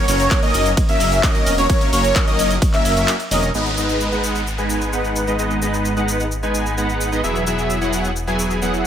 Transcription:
0.08 detuned saw bass F#1, supersaw synth F#3 A#3 C#4 A#4 C#5, analog synth lead C#5, open hi-hat, cabasa
0.20 closed hi-hat, cabasa
0.31 kick, clap, closed hi-hat, ride, cabasa
0.43 supersaw synth F#3 A#3 C#4 A#4 D#5, analog synth lead D#5, closed hi-hat, cabasa
0.54 detuned saw bass F#1, open hi-hat, cabasa
0.66 closed hi-hat, cabasa
0.77 kick, closed hi-hat, ride, cabasa
0.89 supersaw synth F#3 A#3 C#4 A#4 E5, analog synth lead E5, closed hi-hat, cabasa
1.00 detuned saw bass F#1, open hi-hat, cabasa
1.12 closed hi-hat, cabasa
1.23 supersaw synth F#3 A#3 A#4 D#5, analog synth lead D#5, kick, clap, closed hi-hat, ride, cabasa
1.35 closed hi-hat, cabasa
1.46 detuned saw bass E1, open hi-hat, cabasa
1.58 supersaw synth F#3 A#3 C#4 A#4 C#5, analog synth lead C#5, closed hi-hat, cabasa
1.70 supersaw synth F#3 A#3 C#4 C#5, analog synth lead C#5, kick, closed hi-hat, ride, cabasa
1.81 closed hi-hat, cabasa
1.93 detuned saw bass F#1, supersaw synth F#3 A#3 C#4 A#4 C#5, analog synth lead C#5, open hi-hat, cabasa
2.04 closed hi-hat, cabasa
2.16 kick, clap, closed hi-hat, ride, cabasa
2.27 supersaw synth F#3 A#3 C#4 A#4 D#5, analog synth lead D#5, closed hi-hat, cabasa
2.39 detuned saw bass F#1, open hi-hat, cabasa
2.51 closed hi-hat, cabasa
2.62 kick, closed hi-hat, ride, cabasa
2.73 supersaw synth F#3 A#3 C#4 A#4 E5, analog synth lead E5, clap, closed hi-hat, cabasa
2.85 detuned saw bass F#1, open hi-hat, cabasa
2.97 supersaw synth F#3 A#3 C#4 A#4 E5, analog synth lead E5, closed hi-hat, cabasa
3.08 clap, closed hi-hat, ride, cabasa
3.20 closed hi-hat, cabasa
3.31 detuned saw bass E1, supersaw synth F#3 A#3 C#4 A#4 D#5, analog synth lead D#5, open hi-hat, cabasa
3.43 closed hi-hat, cabasa
3.54 detuned saw bass G#1, supersaw synth G#3 B3 D#4 B4 D#5, downlifter, cabasa
3.66 cabasa
3.77 supersaw synth G#3 B3 D#4 B4 D#5, cabasa
3.89 cabasa
4.01 cabasa
4.12 supersaw synth G#3 B3 D#4 B4 F#5, cabasa
4.24 cabasa
4.35 cabasa
4.47 cabasa
4.58 supersaw synth G#3 B3 D#4 B4 G#5, cabasa
4.70 cabasa
4.81 cabasa
4.93 supersaw synth G#3 B3 D#4 B4 F#5, cabasa
5.04 cabasa
5.16 cabasa
5.27 supersaw synth G#3 B3 D#4 B4 D#5, cabasa
5.39 supersaw synth G#3 B3 D#4 B4 D#5, cabasa
5.51 cabasa
5.62 supersaw synth G#3 B3 D#4 B4 D#5, cabasa
5.74 cabasa
5.85 cabasa
5.96 supersaw synth G#3 B3 D#4 B4 F#5, cabasa
6.08 cabasa
6.20 cabasa
6.32 cabasa
6.43 supersaw synth G#3 B3 D#4 B4 G#5, cabasa
6.55 cabasa
6.66 cabasa
6.77 supersaw synth G#3 B3 D#4 B4 F#5, cabasa
6.89 cabasa
7.01 cabasa
7.12 supersaw synth G#3 B3 D#4 B4 D#5, cabasa
7.23 detuned saw bass E1, supersaw synth F#3 B3 E4 G#4 E5, cabasa
7.36 cabasa
7.47 supersaw synth F#3 B3 E4 G#4 E5, cabasa
7.58 cabasa
7.70 cabasa
7.81 supersaw synth F#3 B3 E4 G#4 F#5, cabasa
7.93 cabasa
8.05 cabasa
8.16 cabasa
8.27 supersaw synth F#3 B3 E4 G#4 G#5, cabasa
8.39 cabasa
8.51 cabasa
8.62 supersaw synth F#3 B3 E4 G#4 F#5, cabasa
8.74 cabasa

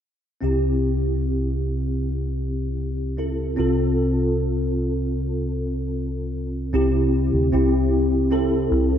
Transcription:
0.41 tine electric piano C2 C3 C4 E4 G4
3.17 tine electric piano C4 E4 A4
3.56 tine electric piano C2 C3 C4 F4 A4
6.73 fingered electric bass C2, tine electric piano C3 C4 E4 G4
7.33 fingered electric bass D2
7.52 fingered electric bass C2, tine electric piano C4 E4 G4
8.31 tine electric piano C4 E4 A4
8.72 fingered electric bass C2

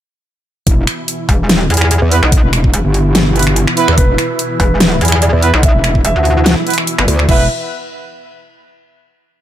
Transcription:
0.67 wobble bass E1, supersaw synth B2 E3 E4, kick, closed hi-hat
0.87 finger snap, closed hi-hat
1.08 closed hi-hat
1.29 wobble bass E1, kick, open hi-hat
1.49 snare, closed hi-hat
1.70 wobble bass E2, closed hi-hat
1.74 closed hi-hat
1.77 closed hi-hat
1.81 finger snap
1.91 closed hi-hat
2.02 wobble bass E2
2.11 brass ensemble B3 E4 B4, open hi-hat
2.23 wobble bass B1, finger snap
2.32 kick, closed hi-hat
2.43 wobble bass E1
2.53 finger snap, closed hi-hat
2.64 kick
2.74 wobble bass E1, closed hi-hat
2.85 wobble bass G1
2.94 open hi-hat
3.15 snare, closed hi-hat
3.36 brass ensemble B3 E4 B4, closed hi-hat
3.39 closed hi-hat
3.43 closed hi-hat
3.47 finger snap
3.56 closed hi-hat
3.67 finger snap
3.77 brass ensemble B3 E4 B4, open hi-hat
3.88 wobble bass E2, finger snap
3.98 wobble bass E1, grand piano B4, kick, closed hi-hat
4.18 finger snap, closed hi-hat
4.39 closed hi-hat
4.60 wobble bass E1, grand piano B4, kick, open hi-hat
4.80 snare, closed hi-hat
5.01 wobble bass E2, closed hi-hat
5.05 closed hi-hat
5.08 closed hi-hat
5.12 finger snap
5.22 grand piano D5, closed hi-hat
5.33 wobble bass E2
5.42 brass ensemble B3 E4 B4, open hi-hat
5.54 wobble bass B1, finger snap
5.63 grand piano E5, kick, closed hi-hat
5.74 wobble bass E1
5.84 finger snap, closed hi-hat
5.95 kick
6.05 wobble bass E1, grand piano E5, closed hi-hat
6.16 wobble bass D2
6.25 open hi-hat
6.46 snare, closed hi-hat
6.67 brass ensemble B3 E4 B4, closed hi-hat
6.70 closed hi-hat
6.74 closed hi-hat
6.78 finger snap
6.87 closed hi-hat
6.99 wobble bass G1, finger snap
7.08 wobble bass D2, open hi-hat
7.19 finger snap
7.29 wobble bass E1, supersaw synth B2 E3 E4, brass ensemble B3 E4 B4, grand piano E5, kick, crash

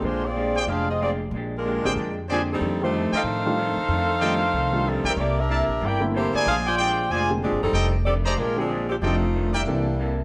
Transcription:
0.02 upright bass A#1, hollow-body jazz guitar A#2 G#3 D4, saxophone section G#3 D4 F4 C5
0.06 hollow-body jazz guitar G4
0.25 saxophone section C4 F4 G#4 D5
0.35 hollow-body jazz guitar A#2 G#3 D4 G4
0.56 trumpet section G#4 C5 D5 G5
0.67 upright bass F1, hollow-body jazz guitar A#2 G#3 D4 G4, saxophone section D4 G#4 C5 F5
0.90 saxophone section C4 F4 G#4 D#5
1.01 hollow-body jazz guitar A#2 G#3 D4 G4, saxophone section C4 F4 G#4 D5
1.31 upright bass A#1, hollow-body jazz guitar A#2
1.35 hollow-body jazz guitar G#3 D4 G4
1.57 saxophone section G#3 D4 F4 A#4
1.65 hollow-body jazz guitar A#2 G#3 D4 G4
1.83 upright bass A1, grand piano D3 G#3 A#3 C4 G4, trumpet section G#4 C5 D5 G5
1.96 upright bass F2, hollow-body jazz guitar A#2 G#3 D4 G4
2.28 hollow-body jazz guitar A#2 G#3 D4 G4, grand piano D3 G#3 A#3 C4 D4, saxophone section F3 C4 G4, trumpet section G#4 C5 D5 G#5
2.33 saxophone section D4
2.53 saxophone section G3 C4 D#4 A4
2.61 upright bass F2, hollow-body jazz guitar F2 D#3 A3 D4
2.81 grand piano D#3 G3 A3 D4 F4, saxophone section A3 D#4 G4 C5
2.94 hollow-body jazz guitar F2 D#3 A3 D4
3.12 trumpet section A4 D5 D#5 G5, saxophone section C5, muted upright bass stroke
3.16 saxophone section D#4 A4 F5
3.24 hollow-body jazz guitar F2 D#3 A3, upright bass A2
3.28 hollow-body jazz guitar D4
3.45 grand piano D#3 G3 A3 D4 F4
3.58 hollow-body jazz guitar F2 D#3 A3 D4
3.77 muted upright bass stroke
3.88 upright bass F2, hollow-body jazz guitar F2 D#3
3.93 hollow-body jazz guitar A3 D4
4.20 hollow-body jazz guitar F2 D#3, grand piano D#3 G3 A3 D4 F4, trumpet section A4 D5 D#5 G5
4.24 hollow-body jazz guitar A3 D4
4.53 upright bass C2, hollow-body jazz guitar F2 D#3 A3 D4
4.72 grand piano D#3 G3 A3 D4 F4
4.86 hollow-body jazz guitar F2 D#3 A3 D4, saxophone section G3 C4 D#4 A4
5.04 upright bass A#1, trumpet section A#4 D5 E5 G5
5.08 saxophone section G3 C4 D#4 A#4
5.16 upright bass C2, hollow-body jazz guitar C3 A#3 E4 A4, saxophone section A#3 G4 C#5 D5
5.21 saxophone section E4
5.40 saxophone section D4 G4 A#4 E5
5.49 hollow-body jazz guitar C3 A#3 E4 A4, trumpet section A#4 D5 E5 A5
5.68 upright bass A#1
5.81 upright bass G1, hollow-body jazz guitar C3 A#3 E4 A4
5.85 saxophone section E4 A#4 D5 G5
6.00 grand piano D3 A3 A#3 C4 E4
6.14 hollow-body jazz guitar C3 A#3 E4 A4, saxophone section A#3 E4 G4 C5
6.33 saxophone section A#3 E4 G4 D5, trumpet section G#4 C5 D5 G#5, muted upright bass stroke
6.46 upright bass A#1, hollow-body jazz guitar A#2 G#3 D4 G4, saxophone section D4 G#4 C5 F5
6.66 saxophone section F4 C5 D5 G5
6.78 hollow-body jazz guitar A#2 G#3 D4 G4, trumpet section G#4 C5 D5 G5
7.10 upright bass F1, hollow-body jazz guitar A#2 G#3 D4 G4, saxophone section F4 C5 D5 G#5, trumpet section G#4 C5 D5 G#5
7.29 grand piano D3 G#3 A#3 C4 G4
7.42 hollow-body jazz guitar A#2 G#3 D4 G4, saxophone section F3 C4 D4 G#4
7.52 upright bass G1
7.63 upright bass F#1, saxophone section G3 C4 D#4 A4
7.73 upright bass F1, hollow-body jazz guitar F2 D#3 A3, trumpet section A4 D5 D#5 G5
7.78 hollow-body jazz guitar D4
8.05 hollow-body jazz guitar F2 D#3 A3 D4, saxophone section C4 G4 A4 D5
8.24 saxophone section A3 D#4 G4 C5, trumpet section G#4 C5 D5 A#5
8.38 upright bass A#1, hollow-body jazz guitar A#2 G#3 D4 G4, saxophone section G#3 D4 F4 A#4
8.56 grand piano D3 G#3 A#3 C4 G4, saxophone section F3 C4 D4 G#4
8.69 hollow-body jazz guitar A#2 G#3 D4 G4
8.89 saxophone section F3 C4 D4 G4
9.02 upright bass F1, hollow-body jazz guitar F2 D#3 A3 D4, grand piano F3 A3 D4 D#4 G4, saxophone section A3 C4 D#4 F4, trumpet section A4 D5 D#5 G5
9.35 hollow-body jazz guitar F2 D#3 A3 D4
9.53 saxophone section G3 A#3 D4 E4, trumpet section A#4 D5 E5 G5
9.66 upright bass C2, hollow-body jazz guitar C3 A#3 E4 A4, grand piano E3 A#3 C4 D4 A4
10.00 hollow-body jazz guitar C3 A#3 E4 A4

